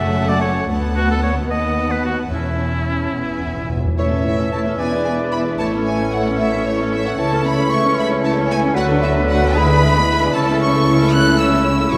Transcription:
Already playing: F#1 F#2 A3 C#4 E5 F#5 A5
0.29 D5
0.41 C#5
0.68 D2 B3 F#5 A5
0.96 F#4
1.11 A4
1.23 C#5
1.48 D#2 B3 D#5 F#5 A5
1.91 B4
2.05 F#4
2.31 E1 E2 C#4 E4 E5 A5
3.14 E1 E2 B3 E5 G#5
3.23 E2
3.30 E2
3.39 E2
3.47 E2
3.55 E2
3.62 E2
3.69 E2
3.77 E2
3.85 E2
3.97 A1 A2 E3 A3 C#4 E4 C#5 E5
4.10 C#4 A4 E5
4.24 A3 E4 C#5 E5
4.38 C#4 A4 E5
4.52 A3 E4 C#5 A5
4.66 C#4 A4 E5
4.78 E1 E2 B3 D4 E4 G#4 B4 D5 E5 G#5
4.92 D4 G#4 B4 D5
5.04 B3 E4 G#4 E5 G#5
5.20 D4 G#4 B4 D5
5.32 B3 E4 G#4 E5 B5
5.45 D4 G#4 B4 D5
5.58 A1 A2 A3 C#4 E4 A4 C#5 E5 A5
5.74 C#4 A4 C#5
5.85 A3 E4 C#5 E5 G#5
6.00 C#4 A4 C#5
6.11 A3 E4 C#5 E5 F#5
6.25 C#4 A4 C#5
6.37 A3 E4 C#5 E5
6.52 C#4 A4 C#5
6.65 A3 E4 C#5 E5
6.79 C#4 A4 C#5
6.92 A3 E4 C#5 E5
7.05 C#4 A4 C#5 F#5
7.18 C#2 C#3 E3 A3 E4 C#5 E5 A5
7.32 C#4 A4 C#5
7.44 A3 E4 C#5 E5 B5
7.58 C#4 A4 C#5
7.69 A3 E4 C#5 E5 C#6
7.84 C#4 A4 C#5
7.95 E4 C#5 E5 B5
7.99 A3 B5
8.11 C#4 A4 C#5
8.21 A3 E4 C#5 E5 A5
8.35 C#4 A4 C#5
8.47 A3 E4 C#5 E5 G#5
8.60 A4 C#5
8.65 C#4
8.72 D2 D3 F#3 F#4 A4 B4 D5 F#5
8.77 A3 F#4 F#5
8.88 B3 D4 A4 B4
9.01 A3 F#4 B4 D5 E5
9.14 B3 D4 A4 B4
9.28 A3 F#4 B4 D5 F#5
9.42 B3 D4 A4 B4
9.55 E3 G#3 E4 G#4 B4 E5 B5
9.70 B3 D4 G#4 D5
9.82 G#3 E4 B4 E5
9.95 B3 D4 G#4 D5
10.09 G#3 E4 B4 E5
10.23 B3 D4 G#4 D5
10.33 C#2 C#3 A3 C#4 E4 A4 C#5 A5
10.47 A3 C#4 A4 E5
10.60 C#4 E4 C#5 C#6
10.72 A3 C#4 A4 E5
10.86 C#4 E4 C#5
10.99 A3 C#4 A4 E5
11.12 C#4 E4 C#5 F#6
11.25 A3 C#4 A4 E5
11.39 C#4 E4 C#5 E6
11.52 A3 C#4 A4 E5
11.65 C#4 E4 C#5
11.78 A3 C#4 A4 E5
11.90 F#1 F#2 F#3 A#3 E4 A#4 C#5 C#6

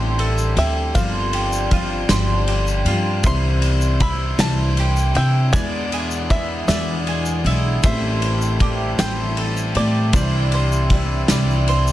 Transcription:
Already playing: A1 A2 E3 G3 A3 C4 E4 G4 A4 C5 E5 G5
0.19 A4, ride
0.38 shaker
0.57 D2 G3 C4 G4 E5, ride
0.95 G1 G2 D3 F3 G3 C4 D4 F4 G4 C5 D5 F5, kick, ride, shaker
1.33 G4, ride
1.52 shaker
1.71 F3 C4 D4 F4 G4, kick, ride, shaker
2.09 G1 G2 D3 F3 C4 D4 G4 C5, snare, ride, shaker
2.48 G4, ride
2.67 shaker
2.85 G2 D4 F4 G4, ride
2.89 F3 C4
3.23 C2 C3 E3 G3 C4 E4 C5 E5 C6, kick, ride, shaker
3.27 G3 C4 E4
3.62 ride, shaker
3.81 shaker
4.00 E4 B5, kick, ride
4.38 C2 C3 E3 G3 C4 E4 C5 A5, snare, ride, shaker
4.77 G4, ride
4.96 shaker
5.14 C3 G3 C4 E4 G5, ride
5.52 E2 B2 E3 G#3 B3 D4 E4 G#4 B4 D5 E5 G#5, kick, ride, shaker
5.92 G#4, ride, shaker
6.11 shaker
6.30 E3 G#3 D4 E4 E5, kick, ride
6.68 E2 B2 E3 G#3 D4 E4 D5 E5, snare, ride, shaker
7.07 G#4, ride
7.25 shaker
7.44 B1 E3 G#3 D4 E4, ride
7.83 A1 A2 E3 G3 A3 C4 E4 G4 A4 C5 E5, kick, ride, shaker
8.22 ride, shaker
8.42 shaker
8.59 E3 G3 C4 E4 G4, kick, ride
8.98 A1 A2 E3 G3 C4 E4 C5 G5, snare, ride, shaker
9.37 A4, ride
9.57 shaker
9.75 A2 G3 C4 E4 G4 D5, ride
10.13 C2 C3 E3 G3 C4 D4 E4 C5 D5 E5, kick, ride, shaker
10.52 C5, ride
10.72 shaker
10.90 E3 G3 D4 E4, kick, ride
10.94 E4
11.28 C2 C3 E3 G3 D4 E4 D5, snare, ride, shaker
11.50 shaker
11.68 C5, ride, shaker
11.87 shaker

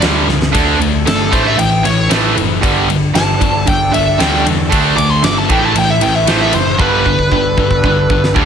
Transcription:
0.02 D2 G2 D3 G3, snare, ride
0.28 C#2 G2 D3, snare
0.42 snare
0.53 D2 D3 A3 D4 A4 E5, kick, ride
0.80 D2 D3 A3, ride
1.06 G1 D3 A3 A4, snare, ride
1.32 A1 A2 E3 A3 E4 B4 C5, kick, ride
1.47 E5
1.58 A1 A2 E3 G5, ride
1.84 A1 A2 E3 C#5, ride
2.10 A1 A2 E3 A3, snare, ride
2.37 F#1 A2 E3, ride
2.61 G1 G2 D3 G3 D4 A4, kick, ride
2.65 G3
2.89 G2 D3, ride
3.15 G1 G2 D3 A5, snare, ride
3.41 G1 G2 D3, kick, ride
3.67 G1 G2 D3 G5, kick, ride
3.93 G1 G2 D3 E5, ride
4.19 D2 G2 D3 G3 G5, snare, ride
4.34 snare
4.46 E2 G2 D3, ride
4.72 D2 D3 A3 D4 E5, kick, ride
4.96 D2 D3 A3 D6, ride
5.10 C6
5.24 G1 D3 A3 D6, snare, ride
5.38 A5
5.50 A1 A2 E3 A3 E4 B4 G5, kick, ride
5.65 A5
5.76 A1 A2 E3 G5, ride
5.90 E5
6.01 A1 A2 E3 G5, ride
6.15 E5
6.27 A1 A2 E3 A3 C5, snare, ride
6.41 E5, snare
6.53 F#1 A2 E3 C5, ride
6.79 G1 G2 D3 G3 D4 A4 B4, kick
7.06 G2 D3, kick
7.19 kick
7.32 G1 G2 D3, kick
7.58 G1 G2 D3, kick
7.71 kick
7.84 G1 G2 D3, kick
8.10 G1 G2 D3, kick
8.24 snare
8.36 D2 G2 D3 G3, kick

